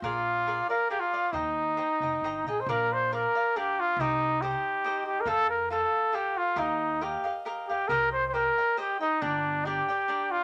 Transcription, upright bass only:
\new Staff \with { instrumentName = "Upright bass" } { \clef bass \time 3/4 \key ees \major \tempo 4 = 138 bes,,2 r4 | ees,4. f,,8 g,,8 bes,,8 | \key bes \major bes,,2 r4 | c,2 r4 |
f,2 r4 | ees,2 r4 | c,2 r4 | g,,2 r4 | }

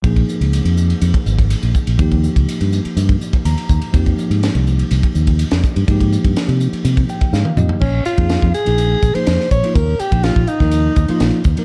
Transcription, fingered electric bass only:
\new Staff \with { instrumentName = "Fingered electric bass" } { \clef bass \time 4/4 \key ees \mixolydian \tempo 4 = 124 bes,,8 r16 des,8 f,8. f,16 r16 aes,,8. bes,,16 r16 bes,,16 | ees,8. des,16 r16 g,8 r16 g,8 r8 ees,16 r16 ees,16 r16 | f,8 r16 aes,8 c,8. c,16 r16 ees,8. f,16 r16 g,16 | aes,8. g,16 r16 c8 r16 c8 r8 aes,16 r16 f,16 r16 |
bes,,8 r16 f,8 f,16 r16 bes,,8. bes,,16 r16 f,16 r16 bes,,16 r16 | ees,8 r16 bes,,8 bes,,16 r16 ees,8. ees,16 r16 bes,,16 r16 ees,16 r16 | }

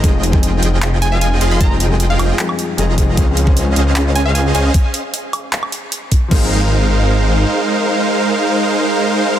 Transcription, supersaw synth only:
\new Staff \with { instrumentName = "Supersaw synth" } { \time 4/4 \key aes \major \tempo 4 = 153 <f f' aes' ees'' g''>4. <f f' aes' ees'' g''>2 <f f' aes' ees'' f''>8 | r4. <f f' aes' ees'' g''>8 r4 <f f' aes' ees'' bes''>4 | <des' aes' c'' ees'' f''>4. <des' aes' c'' ees'' f''>2 <des' aes' c'' ees'' f''>8 | r1 |
<aes ees' bes' c'' f''>1~ | <aes ees' bes' c'' f''>1 | }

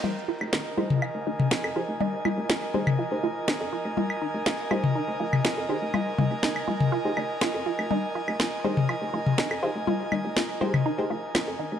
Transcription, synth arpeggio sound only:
\new Staff \with { instrumentName = "Synth arpeggio sound" } { \time 4/4 \key f \minor \tempo 4 = 122 f'8 f'8 ees'8 f'8 f'8 ees'8 f'8 f'8 | ees'8 f'8 f'8 ees'8 f'8 f'8 ees'8 f'8 | f'8 ees'8 f'8 f'8 ees'8 f'8 f'8 ees'8 | f'8 f'8 ees'8 f'8 f'8 ees'8 f'8 f'8 |
ees'8 f'8 f'8 ees'8 f'8 f'8 ees'8 f'8 | f'8 ees'8 f'8 f'8 ees'8 f'8 f'8 ees'8 | }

